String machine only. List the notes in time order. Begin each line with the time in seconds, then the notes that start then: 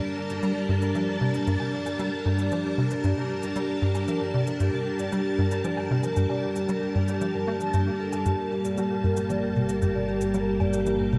Already playing: G3 D4 A#4 G5 A5
8.26 G3
8.33 A#3
8.62 A#4 G5